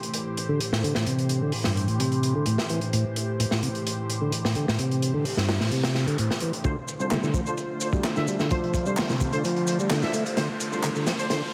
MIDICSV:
0, 0, Header, 1, 8, 480
1, 0, Start_track
1, 0, Key_signature, -1, "minor"
1, 0, Tempo, 465116
1, 1103, Time_signature, 4, 2, 24, 8
1, 11902, End_track
2, 0, Start_track
2, 0, Title_t, "Brass ensemble"
2, 0, Program_c, 0, 61
2, 6860, Note_on_c, 0, 65, 86
2, 6861, Note_on_c, 0, 62, 90
2, 6861, Note_on_c, 0, 72, 103
2, 6862, Note_on_c, 0, 69, 86
2, 6923, Note_off_c, 0, 62, 0
2, 6923, Note_off_c, 0, 65, 0
2, 6924, Note_off_c, 0, 69, 0
2, 6924, Note_off_c, 0, 72, 0
2, 7224, Note_on_c, 0, 65, 70
2, 7225, Note_on_c, 0, 62, 76
2, 7225, Note_on_c, 0, 69, 68
2, 7226, Note_on_c, 0, 72, 88
2, 7283, Note_off_c, 0, 65, 0
2, 7284, Note_off_c, 0, 62, 0
2, 7284, Note_off_c, 0, 69, 0
2, 7284, Note_off_c, 0, 72, 0
2, 7708, Note_on_c, 0, 62, 86
2, 7708, Note_on_c, 0, 72, 96
2, 7709, Note_on_c, 0, 65, 81
2, 7709, Note_on_c, 0, 69, 82
2, 7765, Note_off_c, 0, 62, 0
2, 7765, Note_off_c, 0, 69, 0
2, 7765, Note_off_c, 0, 72, 0
2, 7766, Note_off_c, 0, 65, 0
2, 8067, Note_on_c, 0, 69, 68
2, 8069, Note_on_c, 0, 65, 70
2, 8069, Note_on_c, 0, 72, 80
2, 8070, Note_on_c, 0, 62, 73
2, 8126, Note_off_c, 0, 69, 0
2, 8128, Note_off_c, 0, 62, 0
2, 8128, Note_off_c, 0, 65, 0
2, 8128, Note_off_c, 0, 72, 0
2, 8431, Note_on_c, 0, 62, 80
2, 8431, Note_on_c, 0, 65, 71
2, 8432, Note_on_c, 0, 69, 75
2, 8432, Note_on_c, 0, 76, 92
2, 8521, Note_off_c, 0, 62, 0
2, 8521, Note_off_c, 0, 65, 0
2, 8522, Note_off_c, 0, 69, 0
2, 8522, Note_off_c, 0, 76, 0
2, 8786, Note_on_c, 0, 65, 84
2, 8788, Note_on_c, 0, 62, 98
2, 8788, Note_on_c, 0, 69, 87
2, 8788, Note_on_c, 0, 72, 104
2, 8846, Note_off_c, 0, 65, 0
2, 8847, Note_off_c, 0, 62, 0
2, 8847, Note_off_c, 0, 69, 0
2, 8847, Note_off_c, 0, 72, 0
2, 9154, Note_on_c, 0, 72, 86
2, 9155, Note_on_c, 0, 62, 81
2, 9156, Note_on_c, 0, 65, 72
2, 9156, Note_on_c, 0, 69, 71
2, 9208, Note_off_c, 0, 72, 0
2, 9209, Note_off_c, 0, 62, 0
2, 9209, Note_off_c, 0, 65, 0
2, 9209, Note_off_c, 0, 69, 0
2, 9630, Note_on_c, 0, 72, 104
2, 9631, Note_on_c, 0, 69, 80
2, 9633, Note_on_c, 0, 62, 91
2, 9633, Note_on_c, 0, 65, 82
2, 9686, Note_off_c, 0, 69, 0
2, 9686, Note_off_c, 0, 72, 0
2, 9687, Note_off_c, 0, 65, 0
2, 9688, Note_off_c, 0, 62, 0
2, 9987, Note_on_c, 0, 72, 85
2, 9988, Note_on_c, 0, 69, 70
2, 9989, Note_on_c, 0, 65, 72
2, 9990, Note_on_c, 0, 62, 72
2, 10046, Note_off_c, 0, 72, 0
2, 10047, Note_off_c, 0, 65, 0
2, 10047, Note_off_c, 0, 69, 0
2, 10048, Note_off_c, 0, 62, 0
2, 10351, Note_on_c, 0, 62, 85
2, 10352, Note_on_c, 0, 65, 79
2, 10352, Note_on_c, 0, 69, 73
2, 10353, Note_on_c, 0, 76, 93
2, 10441, Note_off_c, 0, 62, 0
2, 10442, Note_off_c, 0, 65, 0
2, 10442, Note_off_c, 0, 69, 0
2, 10442, Note_off_c, 0, 76, 0
2, 10706, Note_on_c, 0, 62, 89
2, 10706, Note_on_c, 0, 72, 97
2, 10707, Note_on_c, 0, 65, 82
2, 10708, Note_on_c, 0, 69, 85
2, 10766, Note_off_c, 0, 62, 0
2, 10766, Note_off_c, 0, 72, 0
2, 10767, Note_off_c, 0, 65, 0
2, 10767, Note_off_c, 0, 69, 0
2, 11068, Note_on_c, 0, 69, 68
2, 11070, Note_on_c, 0, 62, 75
2, 11070, Note_on_c, 0, 65, 68
2, 11070, Note_on_c, 0, 72, 79
2, 11125, Note_off_c, 0, 69, 0
2, 11126, Note_off_c, 0, 62, 0
2, 11126, Note_off_c, 0, 65, 0
2, 11126, Note_off_c, 0, 72, 0
2, 11549, Note_on_c, 0, 62, 82
2, 11549, Note_on_c, 0, 72, 90
2, 11550, Note_on_c, 0, 69, 77
2, 11551, Note_on_c, 0, 65, 77
2, 11606, Note_off_c, 0, 62, 0
2, 11606, Note_off_c, 0, 69, 0
2, 11606, Note_off_c, 0, 72, 0
2, 11607, Note_off_c, 0, 65, 0
2, 11663, Note_on_c, 0, 69, 87
2, 11664, Note_on_c, 0, 62, 92
2, 11664, Note_on_c, 0, 72, 108
2, 11665, Note_on_c, 0, 65, 85
2, 11725, Note_off_c, 0, 62, 0
2, 11725, Note_off_c, 0, 69, 0
2, 11725, Note_off_c, 0, 72, 0
2, 11726, Note_off_c, 0, 65, 0
2, 11902, End_track
3, 0, Start_track
3, 0, Title_t, "Analog synth pad"
3, 0, Program_c, 1, 89
3, 0, Note_on_c, 1, 45, 78
3, 0, Note_on_c, 1, 52, 70
3, 0, Note_on_c, 1, 67, 71
3, 0, Note_on_c, 1, 72, 83
3, 6822, Note_off_c, 1, 72, 0
3, 6823, Note_off_c, 1, 45, 0
3, 6823, Note_off_c, 1, 52, 0
3, 6823, Note_off_c, 1, 67, 0
3, 6853, Note_on_c, 1, 50, 79
3, 6855, Note_on_c, 1, 72, 83
3, 6857, Note_on_c, 1, 65, 71
3, 6859, Note_on_c, 1, 57, 74
3, 11902, Note_off_c, 1, 50, 0
3, 11902, Note_off_c, 1, 57, 0
3, 11902, Note_off_c, 1, 65, 0
3, 11902, Note_off_c, 1, 72, 0
3, 11902, End_track
4, 0, Start_track
4, 0, Title_t, "Tonewheel organ"
4, 0, Program_c, 2, 16
4, 505, Note_on_c, 2, 50, 70
4, 616, Note_off_c, 2, 50, 0
4, 745, Note_on_c, 2, 45, 67
4, 857, Note_off_c, 2, 45, 0
4, 862, Note_on_c, 2, 50, 95
4, 967, Note_off_c, 2, 50, 0
4, 987, Note_on_c, 2, 45, 70
4, 1092, Note_off_c, 2, 45, 0
4, 1103, Note_on_c, 2, 48, 79
4, 1455, Note_off_c, 2, 48, 0
4, 1466, Note_on_c, 2, 50, 73
4, 1577, Note_off_c, 2, 50, 0
4, 1705, Note_on_c, 2, 43, 69
4, 1934, Note_off_c, 2, 43, 0
4, 1946, Note_on_c, 2, 45, 66
4, 2051, Note_off_c, 2, 45, 0
4, 2063, Note_on_c, 2, 48, 79
4, 2414, Note_off_c, 2, 48, 0
4, 2428, Note_on_c, 2, 50, 95
4, 2532, Note_off_c, 2, 50, 0
4, 2544, Note_on_c, 2, 45, 78
4, 2661, Note_off_c, 2, 45, 0
4, 2784, Note_on_c, 2, 52, 72
4, 2888, Note_off_c, 2, 52, 0
4, 3025, Note_on_c, 2, 45, 77
4, 3142, Note_off_c, 2, 45, 0
4, 3502, Note_on_c, 2, 45, 77
4, 3565, Note_off_c, 2, 45, 0
4, 3626, Note_on_c, 2, 45, 71
4, 3737, Note_off_c, 2, 45, 0
4, 3739, Note_on_c, 2, 48, 71
4, 3804, Note_off_c, 2, 48, 0
4, 4347, Note_on_c, 2, 50, 71
4, 4458, Note_off_c, 2, 50, 0
4, 4586, Note_on_c, 2, 45, 71
4, 4697, Note_off_c, 2, 45, 0
4, 4705, Note_on_c, 2, 50, 96
4, 4808, Note_off_c, 2, 50, 0
4, 4829, Note_on_c, 2, 45, 72
4, 4933, Note_off_c, 2, 45, 0
4, 4943, Note_on_c, 2, 48, 81
4, 5295, Note_off_c, 2, 48, 0
4, 5305, Note_on_c, 2, 50, 69
4, 5416, Note_off_c, 2, 50, 0
4, 5542, Note_on_c, 2, 43, 73
4, 5772, Note_off_c, 2, 43, 0
4, 5783, Note_on_c, 2, 45, 72
4, 5890, Note_off_c, 2, 45, 0
4, 5904, Note_on_c, 2, 48, 82
4, 6255, Note_off_c, 2, 48, 0
4, 6266, Note_on_c, 2, 50, 90
4, 6371, Note_off_c, 2, 50, 0
4, 6383, Note_on_c, 2, 45, 79
4, 6501, Note_off_c, 2, 45, 0
4, 6623, Note_on_c, 2, 52, 72
4, 6728, Note_off_c, 2, 52, 0
4, 6861, Note_on_c, 2, 50, 78
4, 6980, Note_off_c, 2, 50, 0
4, 7342, Note_on_c, 2, 50, 74
4, 7405, Note_off_c, 2, 50, 0
4, 7461, Note_on_c, 2, 50, 73
4, 7575, Note_off_c, 2, 50, 0
4, 7578, Note_on_c, 2, 53, 70
4, 7643, Note_off_c, 2, 53, 0
4, 8185, Note_on_c, 2, 55, 72
4, 8297, Note_off_c, 2, 55, 0
4, 8425, Note_on_c, 2, 50, 68
4, 8537, Note_off_c, 2, 50, 0
4, 8544, Note_on_c, 2, 55, 99
4, 8648, Note_off_c, 2, 55, 0
4, 8667, Note_on_c, 2, 50, 71
4, 8772, Note_off_c, 2, 50, 0
4, 8782, Note_on_c, 2, 53, 80
4, 9134, Note_off_c, 2, 53, 0
4, 9146, Note_on_c, 2, 55, 72
4, 9257, Note_off_c, 2, 55, 0
4, 9386, Note_on_c, 2, 48, 70
4, 9615, Note_off_c, 2, 48, 0
4, 9628, Note_on_c, 2, 50, 69
4, 9732, Note_off_c, 2, 50, 0
4, 9745, Note_on_c, 2, 53, 85
4, 10096, Note_off_c, 2, 53, 0
4, 10109, Note_on_c, 2, 55, 104
4, 10213, Note_off_c, 2, 55, 0
4, 10226, Note_on_c, 2, 50, 84
4, 10342, Note_off_c, 2, 50, 0
4, 10463, Note_on_c, 2, 57, 75
4, 10567, Note_off_c, 2, 57, 0
4, 10702, Note_on_c, 2, 50, 74
4, 10821, Note_off_c, 2, 50, 0
4, 11181, Note_on_c, 2, 50, 73
4, 11245, Note_off_c, 2, 50, 0
4, 11306, Note_on_c, 2, 50, 69
4, 11417, Note_off_c, 2, 50, 0
4, 11425, Note_on_c, 2, 53, 69
4, 11487, Note_off_c, 2, 53, 0
4, 11665, Note_on_c, 2, 50, 80
4, 11782, Note_off_c, 2, 50, 0
4, 11902, End_track
5, 0, Start_track
5, 0, Title_t, "Picked electric bass"
5, 0, Program_c, 3, 34
5, 6859, Note_on_c, 3, 38, 90
5, 6942, Note_off_c, 3, 38, 0
5, 7224, Note_on_c, 3, 36, 87
5, 7517, Note_off_c, 3, 36, 0
5, 7570, Note_on_c, 3, 33, 94
5, 7657, Note_off_c, 3, 33, 0
5, 8179, Note_on_c, 3, 38, 88
5, 8714, Note_off_c, 3, 38, 0
5, 8783, Note_on_c, 3, 38, 95
5, 8864, Note_off_c, 3, 38, 0
5, 9146, Note_on_c, 3, 36, 92
5, 9438, Note_off_c, 3, 36, 0
5, 9498, Note_on_c, 3, 33, 95
5, 9581, Note_off_c, 3, 33, 0
5, 10344, Note_on_c, 3, 38, 94
5, 10421, Note_off_c, 3, 38, 0
5, 10701, Note_on_c, 3, 38, 93
5, 10782, Note_off_c, 3, 38, 0
5, 11063, Note_on_c, 3, 36, 96
5, 11356, Note_off_c, 3, 36, 0
5, 11424, Note_on_c, 3, 33, 98
5, 11504, Note_off_c, 3, 33, 0
5, 11902, End_track
6, 0, Start_track
6, 0, Title_t, "Noise sweep"
6, 0, Program_c, 4, 103
6, 4942, Note_on_c, 4, 60, 71
6, 6863, Note_off_c, 4, 60, 0
6, 11902, End_track
7, 0, Start_track
7, 0, Title_t, "Riser"
7, 0, Program_c, 5, 103
7, 6860, Note_on_c, 5, 60, 75
7, 11902, Note_off_c, 5, 60, 0
7, 11902, End_track
8, 0, Start_track
8, 0, Title_t, "Drums"
8, 31, Note_on_c, 9, 42, 41
8, 134, Note_off_c, 9, 42, 0
8, 140, Note_on_c, 9, 42, 80
8, 243, Note_off_c, 9, 42, 0
8, 386, Note_on_c, 9, 42, 58
8, 489, Note_off_c, 9, 42, 0
8, 624, Note_on_c, 9, 42, 73
8, 727, Note_off_c, 9, 42, 0
8, 751, Note_on_c, 9, 38, 49
8, 854, Note_off_c, 9, 38, 0
8, 869, Note_on_c, 9, 42, 68
8, 972, Note_off_c, 9, 42, 0
8, 979, Note_on_c, 9, 38, 47
8, 1082, Note_off_c, 9, 38, 0
8, 1099, Note_on_c, 9, 42, 77
8, 1202, Note_off_c, 9, 42, 0
8, 1223, Note_on_c, 9, 42, 43
8, 1327, Note_off_c, 9, 42, 0
8, 1335, Note_on_c, 9, 42, 61
8, 1438, Note_off_c, 9, 42, 0
8, 1570, Note_on_c, 9, 46, 74
8, 1673, Note_off_c, 9, 46, 0
8, 1694, Note_on_c, 9, 38, 42
8, 1797, Note_off_c, 9, 38, 0
8, 1828, Note_on_c, 9, 42, 63
8, 1931, Note_off_c, 9, 42, 0
8, 1939, Note_on_c, 9, 42, 40
8, 2043, Note_off_c, 9, 42, 0
8, 2063, Note_on_c, 9, 42, 83
8, 2166, Note_off_c, 9, 42, 0
8, 2186, Note_on_c, 9, 42, 35
8, 2289, Note_off_c, 9, 42, 0
8, 2303, Note_on_c, 9, 42, 68
8, 2406, Note_off_c, 9, 42, 0
8, 2537, Note_on_c, 9, 42, 78
8, 2640, Note_off_c, 9, 42, 0
8, 2665, Note_on_c, 9, 38, 54
8, 2768, Note_off_c, 9, 38, 0
8, 2780, Note_on_c, 9, 42, 66
8, 2884, Note_off_c, 9, 42, 0
8, 2903, Note_on_c, 9, 42, 42
8, 3007, Note_off_c, 9, 42, 0
8, 3025, Note_on_c, 9, 42, 78
8, 3128, Note_off_c, 9, 42, 0
8, 3264, Note_on_c, 9, 42, 65
8, 3367, Note_off_c, 9, 42, 0
8, 3508, Note_on_c, 9, 42, 87
8, 3611, Note_off_c, 9, 42, 0
8, 3622, Note_on_c, 9, 38, 44
8, 3725, Note_off_c, 9, 38, 0
8, 3744, Note_on_c, 9, 42, 62
8, 3847, Note_off_c, 9, 42, 0
8, 3870, Note_on_c, 9, 42, 39
8, 3973, Note_off_c, 9, 42, 0
8, 3990, Note_on_c, 9, 42, 76
8, 4093, Note_off_c, 9, 42, 0
8, 4227, Note_on_c, 9, 42, 59
8, 4330, Note_off_c, 9, 42, 0
8, 4462, Note_on_c, 9, 42, 76
8, 4565, Note_off_c, 9, 42, 0
8, 4590, Note_on_c, 9, 38, 51
8, 4693, Note_off_c, 9, 38, 0
8, 4697, Note_on_c, 9, 42, 58
8, 4800, Note_off_c, 9, 42, 0
8, 4832, Note_on_c, 9, 38, 50
8, 4936, Note_off_c, 9, 38, 0
8, 4940, Note_on_c, 9, 42, 91
8, 5044, Note_off_c, 9, 42, 0
8, 5071, Note_on_c, 9, 42, 36
8, 5174, Note_off_c, 9, 42, 0
8, 5185, Note_on_c, 9, 42, 66
8, 5288, Note_off_c, 9, 42, 0
8, 5420, Note_on_c, 9, 46, 68
8, 5524, Note_off_c, 9, 46, 0
8, 5548, Note_on_c, 9, 38, 39
8, 5651, Note_off_c, 9, 38, 0
8, 5662, Note_on_c, 9, 38, 91
8, 5663, Note_on_c, 9, 42, 67
8, 5765, Note_off_c, 9, 38, 0
8, 5766, Note_off_c, 9, 42, 0
8, 5784, Note_on_c, 9, 38, 45
8, 5888, Note_off_c, 9, 38, 0
8, 5897, Note_on_c, 9, 42, 56
8, 6000, Note_off_c, 9, 42, 0
8, 6021, Note_on_c, 9, 38, 82
8, 6027, Note_on_c, 9, 42, 63
8, 6124, Note_off_c, 9, 38, 0
8, 6130, Note_off_c, 9, 42, 0
8, 6137, Note_on_c, 9, 38, 44
8, 6241, Note_off_c, 9, 38, 0
8, 6269, Note_on_c, 9, 42, 54
8, 6373, Note_off_c, 9, 42, 0
8, 6380, Note_on_c, 9, 42, 83
8, 6483, Note_off_c, 9, 42, 0
8, 6507, Note_on_c, 9, 38, 51
8, 6608, Note_on_c, 9, 42, 68
8, 6611, Note_off_c, 9, 38, 0
8, 6711, Note_off_c, 9, 42, 0
8, 6741, Note_on_c, 9, 42, 45
8, 6844, Note_off_c, 9, 42, 0
8, 6854, Note_on_c, 9, 42, 92
8, 6860, Note_on_c, 9, 36, 100
8, 6861, Note_on_c, 9, 82, 41
8, 6957, Note_off_c, 9, 42, 0
8, 6963, Note_off_c, 9, 36, 0
8, 6964, Note_off_c, 9, 82, 0
8, 7101, Note_on_c, 9, 82, 67
8, 7102, Note_on_c, 9, 42, 65
8, 7205, Note_off_c, 9, 42, 0
8, 7205, Note_off_c, 9, 82, 0
8, 7224, Note_on_c, 9, 82, 29
8, 7327, Note_off_c, 9, 82, 0
8, 7336, Note_on_c, 9, 42, 87
8, 7340, Note_on_c, 9, 39, 98
8, 7340, Note_on_c, 9, 82, 42
8, 7342, Note_on_c, 9, 38, 118
8, 7439, Note_off_c, 9, 42, 0
8, 7443, Note_off_c, 9, 39, 0
8, 7443, Note_off_c, 9, 82, 0
8, 7446, Note_off_c, 9, 38, 0
8, 7466, Note_on_c, 9, 82, 29
8, 7467, Note_on_c, 9, 38, 37
8, 7569, Note_off_c, 9, 82, 0
8, 7570, Note_off_c, 9, 38, 0
8, 7572, Note_on_c, 9, 36, 80
8, 7579, Note_on_c, 9, 42, 57
8, 7579, Note_on_c, 9, 82, 70
8, 7675, Note_off_c, 9, 36, 0
8, 7682, Note_off_c, 9, 42, 0
8, 7683, Note_off_c, 9, 82, 0
8, 7703, Note_on_c, 9, 82, 32
8, 7706, Note_on_c, 9, 42, 37
8, 7806, Note_off_c, 9, 82, 0
8, 7810, Note_off_c, 9, 42, 0
8, 7817, Note_on_c, 9, 42, 80
8, 7818, Note_on_c, 9, 82, 43
8, 7920, Note_off_c, 9, 42, 0
8, 7921, Note_off_c, 9, 82, 0
8, 8058, Note_on_c, 9, 82, 76
8, 8065, Note_on_c, 9, 42, 62
8, 8162, Note_off_c, 9, 82, 0
8, 8168, Note_off_c, 9, 42, 0
8, 8181, Note_on_c, 9, 36, 91
8, 8186, Note_on_c, 9, 82, 33
8, 8284, Note_off_c, 9, 36, 0
8, 8289, Note_off_c, 9, 82, 0
8, 8298, Note_on_c, 9, 38, 107
8, 8300, Note_on_c, 9, 39, 100
8, 8300, Note_on_c, 9, 82, 40
8, 8308, Note_on_c, 9, 42, 82
8, 8401, Note_off_c, 9, 38, 0
8, 8403, Note_off_c, 9, 39, 0
8, 8403, Note_off_c, 9, 82, 0
8, 8411, Note_off_c, 9, 42, 0
8, 8424, Note_on_c, 9, 82, 30
8, 8438, Note_on_c, 9, 38, 57
8, 8527, Note_off_c, 9, 82, 0
8, 8541, Note_on_c, 9, 82, 76
8, 8542, Note_off_c, 9, 38, 0
8, 8545, Note_on_c, 9, 42, 73
8, 8644, Note_off_c, 9, 82, 0
8, 8648, Note_off_c, 9, 42, 0
8, 8663, Note_on_c, 9, 38, 47
8, 8664, Note_on_c, 9, 82, 32
8, 8767, Note_off_c, 9, 38, 0
8, 8768, Note_off_c, 9, 82, 0
8, 8779, Note_on_c, 9, 42, 91
8, 8782, Note_on_c, 9, 82, 42
8, 8783, Note_on_c, 9, 36, 118
8, 8882, Note_off_c, 9, 42, 0
8, 8885, Note_off_c, 9, 82, 0
8, 8886, Note_off_c, 9, 36, 0
8, 8913, Note_on_c, 9, 42, 39
8, 9016, Note_off_c, 9, 42, 0
8, 9016, Note_on_c, 9, 36, 83
8, 9019, Note_on_c, 9, 82, 68
8, 9029, Note_on_c, 9, 42, 57
8, 9120, Note_off_c, 9, 36, 0
8, 9123, Note_off_c, 9, 82, 0
8, 9132, Note_off_c, 9, 42, 0
8, 9142, Note_on_c, 9, 82, 31
8, 9245, Note_off_c, 9, 82, 0
8, 9258, Note_on_c, 9, 39, 106
8, 9258, Note_on_c, 9, 82, 42
8, 9260, Note_on_c, 9, 46, 82
8, 9273, Note_on_c, 9, 38, 110
8, 9362, Note_off_c, 9, 39, 0
8, 9362, Note_off_c, 9, 82, 0
8, 9364, Note_off_c, 9, 46, 0
8, 9377, Note_off_c, 9, 38, 0
8, 9385, Note_on_c, 9, 82, 31
8, 9388, Note_on_c, 9, 38, 43
8, 9488, Note_off_c, 9, 82, 0
8, 9491, Note_off_c, 9, 38, 0
8, 9500, Note_on_c, 9, 36, 87
8, 9502, Note_on_c, 9, 82, 76
8, 9504, Note_on_c, 9, 42, 59
8, 9604, Note_off_c, 9, 36, 0
8, 9605, Note_off_c, 9, 82, 0
8, 9607, Note_off_c, 9, 42, 0
8, 9624, Note_on_c, 9, 42, 43
8, 9626, Note_on_c, 9, 82, 30
8, 9727, Note_off_c, 9, 42, 0
8, 9729, Note_off_c, 9, 82, 0
8, 9746, Note_on_c, 9, 82, 44
8, 9752, Note_on_c, 9, 42, 81
8, 9849, Note_off_c, 9, 82, 0
8, 9855, Note_off_c, 9, 42, 0
8, 9870, Note_on_c, 9, 42, 37
8, 9973, Note_off_c, 9, 42, 0
8, 9983, Note_on_c, 9, 82, 80
8, 9987, Note_on_c, 9, 42, 71
8, 10086, Note_off_c, 9, 82, 0
8, 10090, Note_off_c, 9, 42, 0
8, 10109, Note_on_c, 9, 82, 34
8, 10212, Note_off_c, 9, 82, 0
8, 10221, Note_on_c, 9, 38, 105
8, 10221, Note_on_c, 9, 39, 107
8, 10221, Note_on_c, 9, 82, 43
8, 10223, Note_on_c, 9, 42, 80
8, 10324, Note_off_c, 9, 38, 0
8, 10325, Note_off_c, 9, 39, 0
8, 10325, Note_off_c, 9, 82, 0
8, 10327, Note_off_c, 9, 42, 0
8, 10344, Note_on_c, 9, 82, 29
8, 10353, Note_on_c, 9, 38, 52
8, 10448, Note_off_c, 9, 82, 0
8, 10456, Note_off_c, 9, 38, 0
8, 10460, Note_on_c, 9, 42, 71
8, 10460, Note_on_c, 9, 82, 75
8, 10563, Note_off_c, 9, 42, 0
8, 10563, Note_off_c, 9, 82, 0
8, 10586, Note_on_c, 9, 82, 33
8, 10591, Note_on_c, 9, 42, 50
8, 10690, Note_off_c, 9, 82, 0
8, 10695, Note_off_c, 9, 42, 0
8, 10702, Note_on_c, 9, 42, 85
8, 10703, Note_on_c, 9, 38, 53
8, 10704, Note_on_c, 9, 82, 41
8, 10806, Note_off_c, 9, 42, 0
8, 10807, Note_off_c, 9, 38, 0
8, 10807, Note_off_c, 9, 82, 0
8, 10941, Note_on_c, 9, 42, 61
8, 10944, Note_on_c, 9, 82, 71
8, 11045, Note_off_c, 9, 42, 0
8, 11048, Note_off_c, 9, 82, 0
8, 11068, Note_on_c, 9, 82, 30
8, 11171, Note_off_c, 9, 82, 0
8, 11181, Note_on_c, 9, 42, 82
8, 11183, Note_on_c, 9, 39, 112
8, 11183, Note_on_c, 9, 82, 42
8, 11285, Note_off_c, 9, 42, 0
8, 11286, Note_off_c, 9, 39, 0
8, 11286, Note_off_c, 9, 82, 0
8, 11306, Note_on_c, 9, 82, 29
8, 11409, Note_off_c, 9, 82, 0
8, 11421, Note_on_c, 9, 38, 51
8, 11422, Note_on_c, 9, 82, 73
8, 11423, Note_on_c, 9, 42, 62
8, 11524, Note_off_c, 9, 38, 0
8, 11526, Note_off_c, 9, 42, 0
8, 11526, Note_off_c, 9, 82, 0
8, 11548, Note_on_c, 9, 82, 33
8, 11553, Note_on_c, 9, 42, 41
8, 11652, Note_off_c, 9, 82, 0
8, 11656, Note_off_c, 9, 42, 0
8, 11661, Note_on_c, 9, 38, 55
8, 11664, Note_on_c, 9, 42, 79
8, 11665, Note_on_c, 9, 82, 43
8, 11764, Note_off_c, 9, 38, 0
8, 11767, Note_off_c, 9, 42, 0
8, 11768, Note_off_c, 9, 82, 0
8, 11902, End_track
0, 0, End_of_file